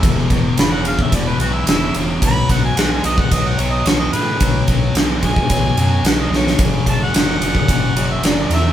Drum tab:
RD |x-x-x-x-x-x-x-x-|x-x-x-x-x-x-x-x-|x-x-x-x-x-x-x---|x-x-x-x-x-x-x-x-|
SD |----o-------o---|----o-------o---|----o-------o-oo|----o-------o-o-|
BD |o-o----oo-------|o-o----oo-------|o-o---ooo-------|o-o----oo-------|